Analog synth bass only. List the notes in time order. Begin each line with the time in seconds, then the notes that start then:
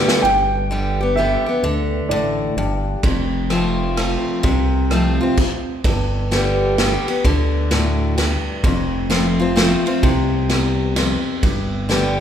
0.24 G1
1.63 D2
2.10 A1
2.56 G1
3.03 F1
4.44 C2
5.84 G1
7.25 D2
8.63 F1
10.03 C2
11.43 G1